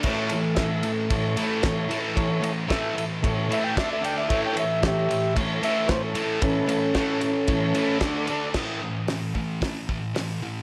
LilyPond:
<<
  \new Staff \with { instrumentName = "Transistor combo organ" } { \time 4/4 \key a \mixolydian \tempo 4 = 113 a8 a2. r8 | r2 r8 e''16 g''16 e''16 e''16 g''16 e''16 | e''16 g''16 e''8 <g' e''>4 r8 e''8 <b' c''>16 a'8. | <cis' a'>2. r4 |
r1 | }
  \new Staff \with { instrumentName = "Transistor combo organ" } { \time 4/4 \key a \mixolydian <e' a' cis''>8 r8 <e' a' e''>8 r8 <e' a' cis''>8 r8 <e' a' cis''>8 r8 | <e' a' cis''>8 r8 <e' a' e''>8 r8 <e' a' cis''>8 r8 <d' a' d''>8 <d' a' d''>8 | <e' a' cis''>8 r8 <e' a' cis''>8 r8 <e' a' cis''>8 r8 <e' a' cis''>8 r8 | <e' a' b'>8 r8 <e' a' cis''>8 r8 <e' a' cis''>8 r8 <d' a' d''>8 <d' a' d''>8 |
r1 | }
  \new Staff \with { instrumentName = "Distorted electric guitar" } { \clef bass \time 4/4 \key a \mixolydian <a, e a>8 <a, e>8 <a, e>8 <a, e>8 <a, e>8 <a, e a>8 <a, e>8 <a, e a>8 | <a, e>8 <a, e>8 <a, e a>8 <a, e>8 <a, e>8 <a, e a>8 <d a d'>8 <d a d'>8 | <a, e a>8 <a, e>8 <a, e>8 <a, e>8 <a, e>8 <a, e a>8 <a, e>8 <a, e a>8 | <a, e>8 <a, e>8 <a, e a>8 <a, e>8 <a, e>8 <a, e a>8 <d a d'>8 <d a d'>8 |
<a, e a>8 <a, e>8 <a, e>8 <a, e>8 <a, e>8 <a, e>8 <a, e>8 <a, e>8 | }
  \new DrumStaff \with { instrumentName = "Drums" } \drummode { \time 4/4 <cymc bd>8 cymr8 <bd cymr sn>8 cymr8 <bd cymr>8 cymr8 <bd cymr sn>8 cymr8 | <bd cymr>8 cymr8 <bd cymr sn>8 cymr8 <bd cymr>8 cymr8 <bd cymr sn>8 cymr8 | <bd cymr>8 cymr8 <bd cymr sn>8 cymr8 <bd cymr>8 cymr8 <bd cymr sn>8 cymr8 | <bd cymr>8 cymr8 <bd cymr sn>8 cymr8 <bd cymr>8 cymr8 <bd cymr sn>8 cymr8 |
<cymc bd sn>4 <hho sn>8 bd8 <hho bd sn>8 bd8 <hho sn>4 | }
>>